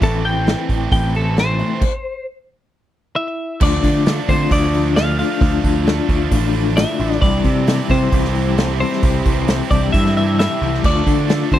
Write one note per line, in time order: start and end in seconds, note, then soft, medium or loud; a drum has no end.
0.01 0.54 A1 medium
0.01 1.58 A2 medium
0.01 1.58 E3 medium
0.01 1.58 A3 medium
0.01 1.59 C4 medium
0.01 1.58 E4 loud
0.01 0.24 A4 loud
0.01 kick loud
0.01 open hi-hat medium
0.25 0.90 G5 loud
0.25 open hi-hat medium
0.47 snare loud
0.47 open hi-hat medium
0.69 0.87 A1 medium
0.69 kick medium
0.69 open hi-hat medium
0.92 1.62 A1 medium
0.92 1.14 G5 medium
0.92 kick loud
0.92 open hi-hat medium
1.15 1.37 A4 medium
1.15 open hi-hat medium
1.37 2.26 C5 medium
1.37 snare medium
1.37 open hi-hat medium
1.59 1.82 A2 medium
1.59 1.81 E3 medium
1.59 1.81 A3 medium
1.59 1.81 C4 medium
1.59 1.80 E4 medium
1.59 open hi-hat medium
1.81 kick loud
1.81 crash loud
3.15 3.58 E4 medium
3.15 3.62 E5 medium
3.61 3.79 D2 medium
3.61 4.05 D3 loud
3.61 4.05 F3 loud
3.61 7.19 F3 medium
3.61 4.05 A3 loud
3.61 4.25 D4 medium
3.61 4.06 D4 loud
3.61 4.06 F4 loud
3.61 7.19 D5 medium
3.61 4.32 D5 loud
3.61 7.19 A5 medium
3.61 7.19 D6 medium
3.61 kick loud
3.61 crash loud
3.84 4.19 D3 medium
3.84 kick medium
3.84 open hi-hat medium
4.05 4.28 D3 medium
4.05 4.28 F3 medium
4.05 4.29 A3 medium
4.05 4.29 D4 medium
4.05 4.29 F4 medium
4.05 snare loud
4.05 open hi-hat medium
4.28 4.49 D3 medium
4.28 4.46 D3 medium
4.28 4.49 F3 medium
4.28 4.50 A3 loud
4.28 4.50 C4 medium
4.28 4.50 D4 loud
4.28 4.50 F4 loud
4.28 4.52 C5 medium
4.28 kick medium
4.28 open hi-hat medium
4.50 5.21 D2 loud
4.50 4.94 D3 loud
4.50 4.94 F3 loud
4.50 4.95 A3 medium
4.50 4.94 D4 loud
4.50 4.93 D4 medium
4.50 4.96 D5 loud
4.50 kick medium
4.50 open hi-hat loud
4.74 open hi-hat medium
4.95 5.17 D3 medium
4.95 5.18 F3 medium
4.95 5.19 A3 medium
4.95 5.18 D4 medium
4.95 5.19 F4 medium
4.95 5.18 F4 medium
4.95 5.17 F5 loud
4.95 snare loud
4.95 open hi-hat medium
5.19 5.40 D3 medium
5.19 5.39 F3 medium
5.19 5.42 A3 medium
5.19 5.41 D4 medium
5.19 5.41 F4 medium
5.19 6.51 F4 medium
5.19 6.50 F5 loud
5.19 open hi-hat medium
5.40 5.59 D2 loud
5.40 5.85 D3 medium
5.40 5.85 F3 medium
5.40 5.87 A3 medium
5.40 5.86 D4 loud
5.40 5.87 F4 loud
5.40 kick loud
5.40 open hi-hat medium
5.64 5.99 D2 medium
5.64 kick medium
5.64 open hi-hat medium
5.86 6.08 D3 medium
5.86 6.08 F3 medium
5.86 6.09 A3 medium
5.86 6.09 D4 medium
5.86 6.09 F4 medium
5.86 snare loud
5.86 open hi-hat medium
6.09 6.26 D2 medium
6.09 6.31 D3 medium
6.09 6.30 F3 medium
6.09 6.32 A3 loud
6.09 6.32 D4 loud
6.09 6.32 F4 medium
6.09 kick medium
6.09 open hi-hat medium
6.31 6.84 A1 loud
6.31 6.77 D3 loud
6.31 6.76 F3 loud
6.31 6.78 A3 loud
6.31 6.77 D4 loud
6.31 6.78 F4 loud
6.31 kick medium
6.31 open hi-hat medium
6.54 open hi-hat medium
6.77 6.98 D3 medium
6.77 6.98 F3 medium
6.77 6.99 A3 medium
6.77 6.99 D4 medium
6.77 7.19 E4 medium
6.77 6.99 F4 medium
6.77 7.21 E5 medium
6.77 snare loud
6.77 open hi-hat medium
6.99 7.17 A1 medium
6.99 7.21 D3 medium
6.99 7.21 F3 medium
6.99 7.22 A3 medium
6.99 7.21 D4 medium
6.99 7.21 F4 loud
6.99 open hi-hat medium
7.12 snare soft
7.22 7.39 C2 loud
7.22 7.67 C3 loud
7.22 7.68 E3 loud
7.22 7.68 G3 loud
7.22 7.68 C4 loud
7.22 7.86 D4 medium
7.22 7.68 E4 loud
7.22 10.80 G4 medium
7.22 7.68 G4 loud
7.22 7.68 A4 loud
7.22 7.92 D5 loud
7.22 10.80 E5 medium
7.22 9.01 A5 medium
7.22 10.81 C6 medium
7.22 kick loud
7.22 open hi-hat medium
7.44 7.79 C3 medium
7.44 kick medium
7.44 open hi-hat medium
7.67 7.89 C3 medium
7.67 7.90 E3 medium
7.67 7.90 G3 medium
7.67 7.90 C4 loud
7.67 7.91 E4 medium
7.67 7.91 G4 medium
7.67 7.91 A4 loud
7.67 snare loud
7.67 open hi-hat medium
7.89 8.12 C3 medium
7.89 8.07 C3 loud
7.89 8.12 E3 loud
7.89 8.12 G3 medium
7.89 8.12 C4 loud
7.89 8.77 C4 medium
7.89 8.13 E4 loud
7.89 8.13 G4 loud
7.89 8.14 A4 medium
7.89 8.79 C5 medium
7.89 kick medium
7.89 open hi-hat medium
8.12 8.83 C2 loud
8.12 8.57 C3 loud
8.12 8.57 E3 loud
8.12 8.57 G3 loud
8.12 8.57 C4 medium
8.12 8.58 E4 loud
8.12 8.58 G4 loud
8.12 8.58 A4 loud
8.12 kick medium
8.12 open hi-hat medium
8.25 snare soft
8.35 open hi-hat medium
8.58 8.80 C3 medium
8.58 8.80 E3 medium
8.58 8.81 G3 medium
8.58 8.81 C4 medium
8.58 8.81 E4 medium
8.58 8.81 G4 medium
8.58 8.82 A4 medium
8.58 snare loud
8.58 open hi-hat medium
8.80 9.02 C3 medium
8.80 9.02 E3 medium
8.80 9.02 G3 medium
8.80 9.67 C4 medium
8.80 9.03 C4 loud
8.80 9.03 E4 medium
8.80 9.03 G4 loud
8.80 9.04 A4 medium
8.80 9.74 C5 medium
8.80 open hi-hat medium
8.92 snare soft
9.02 9.21 C2 medium
9.02 9.47 C3 medium
9.02 9.47 E3 medium
9.02 9.48 G3 loud
9.02 9.48 C4 medium
9.02 9.48 E4 loud
9.02 9.49 G4 loud
9.02 9.50 A4 loud
9.02 10.82 G5 medium
9.02 kick loud
9.02 open hi-hat medium
9.25 9.61 C2 medium
9.25 kick medium
9.25 open hi-hat medium
9.48 9.70 C3 medium
9.48 9.70 E3 medium
9.48 9.70 G3 medium
9.48 9.71 C4 medium
9.48 9.71 E4 medium
9.48 9.72 G4 loud
9.48 9.72 A4 loud
9.48 snare loud
9.48 open hi-hat medium
9.70 9.88 C2 medium
9.70 9.92 C3 medium
9.70 9.93 E3 medium
9.70 9.93 G3 medium
9.70 9.93 C4 loud
9.70 9.92 D4 medium
9.70 9.93 E4 medium
9.70 9.94 G4 medium
9.70 9.95 A4 medium
9.70 9.92 D5 medium
9.70 kick medium
9.70 open hi-hat medium
9.93 10.46 G2 loud
9.93 10.38 C3 medium
9.93 10.38 E3 medium
9.93 10.39 G3 loud
9.93 10.39 C4 medium
9.93 10.39 E4 loud
9.93 10.15 E4 medium
9.93 10.39 G4 loud
9.93 10.41 A4 loud
9.93 10.14 E5 loud
9.93 kick loud
9.93 open hi-hat medium
10.06 snare soft
10.17 10.38 E4 medium
10.17 10.38 E5 loud
10.17 open hi-hat medium
10.39 10.60 C3 medium
10.39 10.60 E3 medium
10.39 10.60 G3 medium
10.39 10.60 C4 medium
10.39 10.81 E4 medium
10.39 10.61 E4 medium
10.39 10.61 G4 medium
10.39 10.62 A4 medium
10.39 10.85 E5 loud
10.39 snare loud
10.39 open hi-hat medium
10.61 10.79 C2 medium
10.61 10.82 C3 medium
10.61 10.82 E3 medium
10.61 10.82 G3 medium
10.61 10.83 C4 medium
10.61 10.83 E4 medium
10.61 10.83 G4 medium
10.61 10.85 A4 medium
10.61 open hi-hat medium
10.74 snare soft
10.83 11.01 D2 medium
10.83 11.29 D3 medium
10.83 11.29 F3 medium
10.83 11.59 F3 medium
10.83 11.29 A3 loud
10.83 11.29 D4 medium
10.83 11.49 D4 medium
10.83 11.30 F4 medium
10.83 11.30 A4 loud
10.83 11.59 D5 medium
10.83 11.49 D5 loud
10.83 11.59 A5 medium
10.83 11.59 D6 medium
10.83 kick loud
10.83 crash loud
11.07 11.42 D3 medium
11.07 kick medium
11.07 open hi-hat medium
11.29 11.51 D3 medium
11.29 11.50 F3 medium
11.29 11.52 A3 medium
11.29 11.52 D4 medium
11.29 11.52 F4 loud
11.29 11.53 A4 medium
11.29 snare loud
11.29 open hi-hat medium
11.51 11.59 D3 medium
11.51 11.59 D3 loud
11.51 11.59 F3 medium
11.51 11.59 A3 medium
11.51 11.59 C4 medium
11.51 11.59 D4 medium
11.51 11.59 F4 loud
11.51 11.59 A4 medium
11.51 11.59 C5 loud
11.51 kick medium
11.51 open hi-hat medium